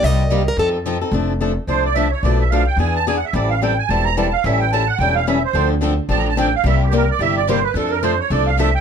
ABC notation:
X:1
M:4/4
L:1/8
Q:"Swing" 1/4=218
K:Fmix
V:1 name="Accordion"
z8 | [K:F] z4 c d e _d | d e f g ^g a (3g _g e | d f g _a =a b a f |
e g a _g =g f e c- | c z3 (3a b a g f | e G B d e d c =B | A B c _d =d f e g |]
V:2 name="Steel-string acoustic guitar"
e3 B A z3 | [K:F] z8 | z8 | z8 |
z8 | z8 | z8 | z8 |]
V:3 name="Steel-string acoustic guitar"
[C,G,B,EG] z [C,G,B,EG] z [F,CEA] z [F,CEA] [CEA] | [K:F] [F,A,DA] z [F,A,DA] z [F,A,DA] z [F,A,DA] z | [=B,,F,A,DA] z [B,,F,A,DA] z [E,=B,D^G] z [E,B,DG] z | [E,G,CEA] z [E,G,CEA] z [E,G,CEA] z [E,G,CEA] z |
[E,G,^CEA] z [E,G,CEA] z [E,G,CEA] z [E,G,CEA] z | [D,F,CDA] z [D,F,CDA] z [D,F,CDA] z [D,F,CDA] z | [C,G,B,EG] z [C,G,B,EG] z [C,G,B,EG] z [C,G,B,EG] z | [F,A,DA] z [F,A,DA] z [F,A,DA] z [F,A,DA] z |]
V:4 name="Steel-string acoustic guitar"
[C,G,B,EG] z [C,G,B,EG] z [F,CEA] z [F,CEA] z | [K:F] z8 | z8 | z8 |
z8 | [D,F,CDA] z [D,F,CDA] z [D,F,CDA] z [D,F,CDA] z | [C,G,B,EG] z [C,G,B,EG] z [C,G,B,EG] z [C,G,B,EG] z | [F,CDA] z [F,CDA] z [F,CDA] z [F,CDA] z |]
V:5 name="Upright bass" clef=bass
C,,4 F,,4 | [K:F] F,,,4 C,,4 | =B,,,4 E,,4 | A,,,4 E,,,4 |
A,,,4 E,,,4 | D,,4 A,,,4 | C,,4 G,,,4 | F,,4 C,,4 |]